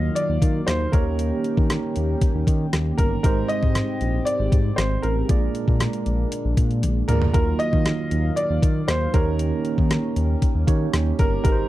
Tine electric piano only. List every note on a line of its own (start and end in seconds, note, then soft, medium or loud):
0.00 0.93 D#3 medium
0.00 0.89 A#3 medium
0.00 0.90 D#4 medium
0.00 0.90 F4 medium
0.00 0.90 F#4 medium
0.92 1.66 D#3 medium
0.92 2.94 A#3 medium
0.92 2.94 D#4 medium
0.92 2.95 G4 medium
0.92 2.95 C#5 medium
3.23 3.97 G#2 medium
3.23 5.25 G#3 medium
3.23 5.25 D#4 medium
3.23 5.26 G4 medium
3.23 5.26 C5 medium
5.28 6.02 A#2 medium
5.28 7.05 A#3 medium
5.28 7.05 F4 soft
5.28 7.06 G#4 soft
5.28 7.06 D5 medium
7.09 7.32 A#3 soft
7.09 7.33 F4 soft
7.09 7.35 G#4 soft
7.09 7.35 D5 soft
7.34 8.08 D#3 medium
7.34 9.10 A#3 medium
7.34 9.11 D#4 medium
7.34 9.10 F4 medium
7.34 9.11 F#4 soft
9.13 9.87 D#3 medium
9.13 10.64 A#3 medium
9.13 10.65 D#4 medium
9.13 10.65 G4 medium
9.13 10.66 C#5 medium
10.67 11.44 A#3 medium
10.67 11.43 D#4 soft
10.67 11.44 G4 soft
10.67 11.45 C#5 medium
11.44 11.69 G#2 medium
11.44 11.69 G#3 medium
11.44 11.69 D#4 medium
11.44 11.69 G4 medium
11.44 11.52 B4 medium
11.52 11.69 C5 medium